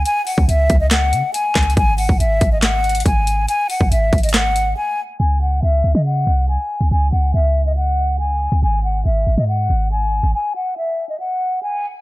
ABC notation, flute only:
X:1
M:4/4
L:1/16
Q:1/4=140
K:C#m
V:1 name="Flute"
g2 f2 e3 d f4 g4 | g2 f2 e3 d f4 g4 | g2 f2 e3 d f4 g4 | g2 f2 e3 d f4 g4 |
g2 f2 e3 d f4 g4 | g2 f2 e3 d f4 g4 | g2 f2 e3 d f4 g4 |]